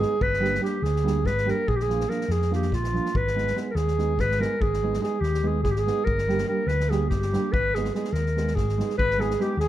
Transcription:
Already playing: clarinet G#4
0.00 nylon-string guitar G#3 B3 D#4 G#4, snare
0.20 fingered electric bass G1, clarinet B4, kick
0.33 snare
0.40 nylon-string guitar G3 A#3 D4 G4
0.45 snare
0.55 snare
0.60 nylon-string guitar G3 A#3 D4 G4, clarinet G4
0.65 snare
0.82 fingered electric bass D2, clarinet G#4, snare
0.96 snare
1.03 nylon-string guitar G3 A#3 D4 G4, snare
1.24 fingered electric bass G#1, clarinet B4, kick, snare
1.38 snare
1.45 nylon-string guitar G3 A#3 D4 G4, snare
1.50 clarinet A#4
1.68 fingered electric bass A#1, clarinet G#4, kick
1.76 clarinet G4, snare
1.82 clarinet G#4
1.88 nylon-string guitar F3 A#3 D4 F4, snare
2.00 snare
2.08 nylon-string guitar F3 A#3 D4 F4, clarinet A#4, snare
2.21 snare
2.28 fingered electric bass F2, clarinet G#4, snare
2.42 snare
2.50 nylon-string guitar F3 A#3 D4 F4, snare
2.55 clarinet G4
2.62 snare
2.72 fingered electric bass A#1, clarinet F4, kick, snare
2.84 snare
2.93 nylon-string guitar F3 A#3 D4 F4, snare
3.06 snare
3.14 fingered electric bass G#1, clarinet B4, kick
3.27 snare
3.35 nylon-string guitar G#3 B3 D#4 G#4, snare
3.47 snare
3.55 nylon-string guitar G#3 B3 D#4 G#4, snare
3.71 clarinet A#4
3.75 fingered electric bass D#2, clarinet G#4, snare
3.88 snare
3.97 nylon-string guitar G#3 B3 D#4 G#4, snare
4.17 fingered electric bass G#1, clarinet B4, kick, snare
4.31 snare
4.39 nylon-string guitar G#3 B3 D#4 G#4, clarinet A#4, snare
4.60 fingered electric bass G#1, clarinet G#4, kick
4.73 snare
4.82 nylon-string guitar G#3 B3 D#4 G#4
4.93 snare
5.00 nylon-string guitar G#3 B3 D#4 G#4, clarinet G#4, snare
5.20 fingered electric bass D#2, clarinet G4, snare
5.34 snare
5.43 nylon-string guitar G#3 B3 D#4 G#4, clarinet G#4
5.63 fingered electric bass G#1, clarinet G#4, kick, snare
5.71 clarinet G4
5.76 clarinet G#4, snare
5.86 nylon-string guitar G#3 B3 D#4 G#4, snare
6.05 fingered electric bass G1, clarinet A#4, kick
6.18 snare
6.27 nylon-string guitar G3 A#3 D4 G4, snare
6.38 snare
6.47 nylon-string guitar G3 A#3 D4 G4, clarinet A#4
6.67 fingered electric bass D2, clarinet B4, snare
6.80 snare
6.89 nylon-string guitar G3 A#3 D4 G4, clarinet G#4, snare
7.09 fingered electric bass G1, clarinet G4, kick, snare
7.22 snare
7.32 nylon-string guitar G3 A#3 D4 G4, snare
7.52 fingered electric bass G#1, clarinet B4, kick
7.75 nylon-string guitar G#3 B3 D#4 G#4, clarinet G#4, snare
7.85 snare
7.94 nylon-string guitar G#3 B3 D#4 G#4, clarinet G#4, snare
8.04 snare
8.13 fingered electric bass D#2, clarinet A#4, snare
8.26 snare
8.36 nylon-string guitar G#3 B3 D#4 G#4, snare
8.47 snare
8.55 fingered electric bass G#1, clarinet G#4, kick, snare
8.69 snare
8.77 nylon-string guitar G#3 B3 D#4 G#4, snare
8.90 snare
8.98 fingered electric bass G#1, clarinet B4, trumpet B4, kick
9.11 snare
9.17 nylon-string guitar G#3 B3 D#4 G#4, clarinet G#4, snare
9.22 trumpet G#4
9.30 snare
9.39 nylon-string guitar G#3 B3 D#4 G#4, trumpet G4, clarinet G4, snare
9.57 fingered electric bass D#2, trumpet G#4, clarinet G#4, snare

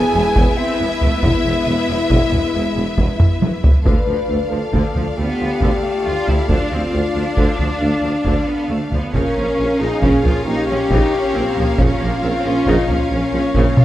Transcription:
Already playing: viola section B3, string section B3 E4 B4 E5, french horn section G#4, violin section G#5, flute G#5
0.13 tuba E1, double bass section E1, cello section E2
0.35 tuba E1, double bass section E1, cello section E2, taiko
0.57 viola section C4, french horn section E4, violin section E5, flute E5
0.80 tuba E1, double bass section E1, cello section E2, viola section B3
1.01 tuba E1, double bass section E1, cello section E2, viola section A3, taiko low
1.22 tuba E1, double bass section E1, cello section E2, viola section G#3, french horn section E4, violin section E5, flute E5, taiko
1.44 tuba E1, double bass section E1, cello section E2
1.67 tuba E1, double bass section E1, cello section E2
1.89 tuba E1, double bass section E1, cello section E2
2.10 tuba E1, double bass section E1, cello section E2, taiko
2.32 tuba E1, double bass section E1, cello section E2, taiko low
2.54 tuba E1, double bass section E1, cello section E2
2.76 tuba E1, double bass section E1, cello section E2
2.96 tuba E1, double bass section E1, cello section E2, taiko
3.20 taiko low-mid
3.41 tuba E1, double bass section E1, cello section E2, taiko high
3.62 tuba E1, double bass section E1, cello section E2, taiko low
3.84 tuba D2, double bass section D2, viola section D3, string section D4 F4 A4 F5, french horn section B4, violin section D5 F5, taiko
4.07 tuba D2, double bass section D2, viola section F3
4.29 tuba D2, double bass section D2, viola section A3
4.51 tuba D2, double bass section D2, viola section F3, french horn section A4
4.73 tuba D2, double bass section D2, viola section D3, taiko
4.95 tuba D2, double bass section D2, viola section F3, taiko low
5.17 tuba D2, double bass section D2, viola section A3, cello section B3, french horn section G4
5.40 tuba D2, double bass section D2, viola section F3
5.61 tuba D2, double bass section D2, viola section D3, taiko
5.83 cello section A3
6.05 tuba D2, double bass section D2, viola section A3, cello section F4
6.27 tuba D2, double bass section D2, viola section F3, cello section E4, taiko low
6.49 tuba D2, double bass section D2, viola section D3, cello section D4, french horn section F4, taiko
6.71 tuba D2, double bass section D2, viola section F3, cello section C4
6.93 tuba D2, double bass section D2, viola section A3, cello section D4
7.15 double bass section D2, tuba D2, viola section F3
7.37 tuba D2, double bass section D2, viola section D3, taiko
7.59 double bass section D2, tuba D2, viola section F3, taiko low
7.81 double bass section D2, tuba D2, viola section A3, french horn section D4
8.02 double bass section D2, tuba D2, viola section F3
8.25 double bass section D2, tuba D2, viola section D3, taiko
8.47 cello section B3
8.70 double bass section D2, tuba D2, cello section A3, viola section A3
8.91 tuba D2, double bass section D2, viola section F3, cello section B3, taiko low
9.12 double bass section A#1, tuba A#1, viola section C#3, string section C#4 F4 A#4 F5, cello section C#4, french horn section A#4, violin section C#5 F5, taiko
9.36 tuba A#1, double bass section A#1, viola section F3
9.57 tuba A#1, double bass section A#1, viola section A#3
9.80 tuba A#1, double bass section A#1, viola section F3, cello section D#4, french horn section G#4
10.01 tuba A#1, double bass section A#1, viola section C#3, cello section C#4, taiko
10.23 tuba A#1, double bass section A#1, viola section F3, cello section F4, taiko low
10.45 tuba A#1, double bass section A#1, viola section A#3, cello section D#4, french horn section G4
10.67 tuba A#1, double bass section A#1, viola section F3, cello section C#4
10.89 tuba A#1, double bass section A#1, viola section C#3, cello section D#4, taiko
11.12 cello section C#4
11.34 tuba A#1, double bass section A#1, viola section A#3, cello section C4
11.56 tuba A#1, double bass section A#1, viola section F3, cello section A#3, taiko low
11.78 tuba A#1, double bass section A#1, viola section C#3, cello section C#4, french horn section F4, taiko
12.00 tuba A#1, double bass section A#1, viola section F3, cello section A#3
12.23 double bass section A#1, tuba A#1, viola section A#3, cello section C4
12.44 double bass section A#1, tuba A#1, viola section F3, cello section C#4
12.66 double bass section A#1, tuba A#1, viola section C#3, cello section D#4, taiko
12.88 double bass section A#1, tuba A#1, viola section F3, cello section C#4, taiko low
13.11 tuba A#1, double bass section A#1, viola section A#3, french horn section C#4
13.33 double bass section A#1, tuba A#1, viola section F3
13.55 double bass section A#1, tuba A#1, viola section C#3, taiko
13.77 cello section F4, taiko mid

